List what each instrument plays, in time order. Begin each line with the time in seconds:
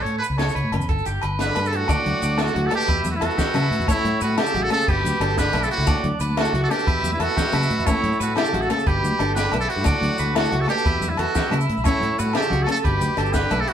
Already playing: steel-string acoustic guitar C#4, clean electric guitar A4
0.02 fingered electric bass A2, muted trumpet C#5, closed hi-hat
0.18 muted trumpet B4, clean electric guitar B4, closed hi-hat
0.24 maracas
0.30 fingered electric bass C#2
0.38 steel-string acoustic guitar E4, clean electric guitar A4, muted trumpet C#5, snare, closed hi-hat, low agogo
0.49 maracas
0.55 fingered electric bass C#2, clean electric guitar B4, closed hi-hat
0.64 fingered electric bass A2
0.72 fingered electric bass F#1, steel-string acoustic guitar C#4, closed hi-hat, low agogo
0.80 fingered electric bass E2, maracas
0.89 fingered electric bass G1, clean electric guitar A4, kick, closed hi-hat
0.98 maracas
1.05 fingered electric bass G1, clean electric guitar G4, closed hi-hat, maracas
1.21 fingered electric bass G1, clean electric guitar B4, closed hi-hat, low agogo
1.39 muted trumpet B4, snare, closed hi-hat, maracas
1.44 trombone D3
1.55 fingered electric bass G2, steel-string acoustic guitar B3, clean electric guitar B4, closed hi-hat, low agogo, maracas
1.66 trombone C#3, muted trumpet A4, maracas
1.72 muted trumpet F#4, clean electric guitar A4, closed hi-hat
1.76 trombone A2
1.88 fingered electric bass D2, steel-string acoustic guitar D4, clean electric guitar D5, transistor combo organ F#5 A5 D6, kick, closed hi-hat, high conga, low agogo, maracas
2.06 fingered electric bass D2, closed hi-hat, low conga
2.22 fingered electric bass D2, clean electric guitar D5, closed hi-hat, maracas
2.31 high conga
2.38 steel-string acoustic guitar E4, clean electric guitar A4, snare, closed hi-hat, low agogo
2.43 trombone A2, muted trumpet F#4
2.47 maracas
2.55 fingered electric bass D2, clean electric guitar F#4, closed hi-hat, low conga
2.65 trombone C#3, muted trumpet A4, low conga
2.71 steel-string acoustic guitar D4, clean electric guitar A4, closed hi-hat, high conga, low agogo
2.75 trombone B2, muted trumpet G4
2.81 maracas
2.87 fingered electric bass E2, clean electric guitar B4, transistor combo organ E5 B5 E6, kick, closed hi-hat
3.05 fingered electric bass E2, closed hi-hat, low conga, maracas
3.11 trombone A2, muted trumpet F#4, high conga
3.16 trombone G2, muted trumpet E4
3.21 fingered electric bass E2, steel-string acoustic guitar E4, muted trumpet F#4, clean electric guitar A4, closed hi-hat, low agogo
3.25 trombone B2
3.30 low conga, maracas
3.38 fingered electric bass E3, clean electric guitar G4, kick, snare, closed hi-hat, maracas
3.54 fingered electric bass C#3, steel-string acoustic guitar C#4, clean electric guitar E4, closed hi-hat, high conga, low conga, low agogo, maracas
3.71 fingered electric bass A2, closed hi-hat
3.80 fingered electric bass E2, maracas
3.87 fingered electric bass A1, steel-string acoustic guitar C#4, muted trumpet E4, clean electric guitar C#5, transistor combo organ A5 C#6, kick, closed hi-hat, high conga, low agogo, maracas
3.92 trombone A2
4.04 fingered electric bass A2, closed hi-hat, low conga
4.21 fingered electric bass A2, trombone A2, muted trumpet F#4, clean electric guitar B4, closed hi-hat, maracas
4.30 high conga
4.38 trombone C#3, steel-string acoustic guitar E4, muted trumpet G4, clean electric guitar A4, snare, closed hi-hat, low conga, low agogo
4.46 maracas
4.54 fingered electric bass A1, clean electric guitar F#4, closed hi-hat, low conga
4.63 trombone C#3, muted trumpet A4, low conga
4.70 trombone C#3, steel-string acoustic guitar C#4, clean electric guitar A4, muted trumpet A4, snare, closed hi-hat, high conga, low agogo
4.81 maracas
4.87 fingered electric bass G1, trombone B2, muted trumpet G4, clean electric guitar B4, transistor combo organ G5 B5 D6, kick, closed hi-hat
5.05 fingered electric bass D2, closed hi-hat, low conga, maracas
5.14 high conga
5.20 fingered electric bass G1, steel-string acoustic guitar D4, clean electric guitar A4, closed hi-hat, low agogo
5.30 maracas
5.37 trombone D3, clean electric guitar G4, muted trumpet B4, kick, snare, closed hi-hat, maracas
5.53 fingered electric bass B1, steel-string acoustic guitar B3, clean electric guitar E4, closed hi-hat, high conga, low conga, low agogo, maracas
5.63 trombone C#3, muted trumpet A4, maracas
5.71 trombone A2, muted trumpet F#4, closed hi-hat
5.78 fingered electric bass C#2, maracas
5.87 fingered electric bass D2, clean electric guitar D5, transistor combo organ F#5 A5, muted steel-string acoustic guitar stroke, kick, closed hi-hat, high conga, low agogo, maracas
6.03 fingered electric bass D2, closed hi-hat, low conga
6.20 fingered electric bass D2, clean electric guitar B4, closed hi-hat, maracas
6.30 high conga
6.37 trombone A2, steel-string acoustic guitar E4, muted trumpet F#4, clean electric guitar A4, snare, closed hi-hat, low conga, low agogo
6.45 maracas
6.53 fingered electric bass C#2, clean electric guitar F#4, closed hi-hat, low conga
6.63 trombone C#3, muted trumpet A4, low conga
6.70 steel-string acoustic guitar D4, muted trumpet G4, clean electric guitar A4, snare, closed hi-hat, high conga, low agogo
6.74 trombone B2
6.79 maracas
6.87 fingered electric bass E2, clean electric guitar B4, transistor combo organ E5 B5 E6, kick, closed hi-hat
7.03 fingered electric bass E2, closed hi-hat, low conga, maracas
7.12 trombone G2, muted trumpet E4, high conga
7.20 fingered electric bass E2, trombone B2, steel-string acoustic guitar E4, muted trumpet F#4, clean electric guitar A4, closed hi-hat, low agogo
7.29 low conga, maracas
7.37 fingered electric bass E3, clean electric guitar G4, kick, snare, closed hi-hat, maracas
7.52 fingered electric bass C#3, steel-string acoustic guitar C#4, clean electric guitar E4, closed hi-hat, high conga, low conga, low agogo, maracas
7.63 maracas
7.70 fingered electric bass A2, closed hi-hat
7.79 fingered electric bass E2, maracas
7.86 fingered electric bass A1, trombone A2, steel-string acoustic guitar C#4, muted trumpet E4, clean electric guitar C#5, transistor combo organ A5 C#6, kick, closed hi-hat, high conga, low conga, low agogo, maracas
8.03 fingered electric bass A2, closed hi-hat, low conga
8.13 low conga, maracas
8.20 fingered electric bass A2, trombone A2, muted trumpet F#4, clean electric guitar B4, closed hi-hat, maracas
8.28 high conga
8.36 trombone C#3, steel-string acoustic guitar E4, muted trumpet G4, clean electric guitar A4, snare, closed hi-hat, low conga, low agogo, maracas
8.45 maracas
8.53 fingered electric bass A1, clean electric guitar F#4, closed hi-hat, low conga
8.61 trombone C#3, muted trumpet A4, low conga, maracas
8.70 trombone C#3, steel-string acoustic guitar C#4, clean electric guitar A4, muted trumpet A4, snare, closed hi-hat, high conga, low agogo
8.79 low conga, maracas
8.86 fingered electric bass G1, trombone B2, muted trumpet G4, clean electric guitar B4, transistor combo organ G5 B5 D6, kick, closed hi-hat
9.03 fingered electric bass D2, closed hi-hat, low conga, maracas
9.12 high conga
9.19 fingered electric bass G1, steel-string acoustic guitar D4, clean electric guitar A4, closed hi-hat, low agogo
9.35 trombone D3, clean electric guitar G4, muted trumpet B4, snare, closed hi-hat, maracas
9.52 fingered electric bass B1, steel-string acoustic guitar B3, clean electric guitar E4, closed hi-hat, high conga, low conga, low agogo
9.60 trombone C#3, muted trumpet A4, maracas
9.69 trombone A2, muted trumpet F#4, closed hi-hat
9.76 fingered electric bass G2, maracas
9.84 fingered electric bass D2, steel-string acoustic guitar D4, clean electric guitar D5, transistor combo organ F#5 A5, kick, closed hi-hat, high conga, low agogo, maracas
10.01 fingered electric bass D2, closed hi-hat, low conga
10.18 fingered electric bass D2, clean electric guitar B4, closed hi-hat, maracas
10.27 high conga
10.35 trombone A2, steel-string acoustic guitar E4, muted trumpet F#4, clean electric guitar A4, snare, closed hi-hat, low conga, low agogo
10.45 maracas
10.51 fingered electric bass C#2, clean electric guitar F#4, closed hi-hat, low conga
10.59 trombone C#3, muted trumpet A4, low conga
10.68 trombone B2, steel-string acoustic guitar D4, muted trumpet G4, clean electric guitar A4, closed hi-hat, high conga, low agogo
10.78 maracas
10.85 fingered electric bass E2, clean electric guitar B4, transistor combo organ E5 B5 E6, kick, closed hi-hat
11.00 fingered electric bass E2, closed hi-hat, low conga, maracas
11.09 trombone G2, muted trumpet E4, high conga
11.17 fingered electric bass E2, trombone B2, steel-string acoustic guitar E4, muted trumpet F#4, clean electric guitar A4, closed hi-hat, low agogo
11.28 low conga, maracas
11.35 fingered electric bass E3, clean electric guitar G4, kick, snare, closed hi-hat, maracas
11.51 fingered electric bass C#3, steel-string acoustic guitar C#4, clean electric guitar E4, closed hi-hat, high conga, low conga, low agogo, maracas
11.61 maracas
11.69 fingered electric bass A2, closed hi-hat
11.77 fingered electric bass B1, maracas
11.84 fingered electric bass A1, trombone A2, steel-string acoustic guitar C#4, muted trumpet E4, clean electric guitar C#5, transistor combo organ A5 C#6, kick, closed hi-hat, high conga, low agogo, maracas
12.00 fingered electric bass A2, closed hi-hat, low conga
12.19 fingered electric bass A2, trombone A2, muted trumpet F#4, clean electric guitar B4, closed hi-hat, maracas
12.26 high conga
12.33 trombone C#3, steel-string acoustic guitar E4, muted trumpet G4, clean electric guitar A4, snare, closed hi-hat, low agogo
12.42 maracas
12.50 fingered electric bass C#2, clean electric guitar F#4, closed hi-hat, low conga
12.61 trombone C#3, muted trumpet A4
12.67 trombone C#3, steel-string acoustic guitar C#4, clean electric guitar A4, closed hi-hat, high conga, low agogo
12.71 muted trumpet A4
12.76 maracas
12.84 fingered electric bass G1, trombone B2, muted trumpet G4, clean electric guitar B4, transistor combo organ G5 B5 D6, kick, closed hi-hat
13.01 fingered electric bass D2, closed hi-hat, low conga, maracas
13.10 high conga
13.17 fingered electric bass G1, steel-string acoustic guitar D4, clean electric guitar A4, closed hi-hat, low agogo
13.26 low conga, maracas
13.34 trombone D3, clean electric guitar G4, muted trumpet B4, kick, snare, closed hi-hat, maracas
13.50 fingered electric bass B1, steel-string acoustic guitar B3, clean electric guitar E4, closed hi-hat, high conga, low conga, low agogo, maracas
13.60 trombone C#3, muted trumpet A4
13.67 trombone A2, muted trumpet F#4, closed hi-hat